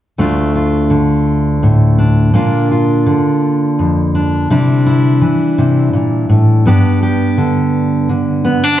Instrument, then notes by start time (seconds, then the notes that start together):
steel-string acoustic guitar
0.18 D2 A3 D4 F4
0.55 F4
0.90 D3
1.63 A2
1.98 D4
2.34 A#2 A#3 D4 F4
2.71 F4
3.06 D3
3.79 F2
4.15 D4
4.50 C3 G3 D4 E4
4.86 E4
5.21 E3
5.58 C3
5.93 A#2
6.29 A2
6.66 G2 B3 D4 G4
7.03 G4
7.38 D3
8.09 D3
8.45 B3
8.64 D4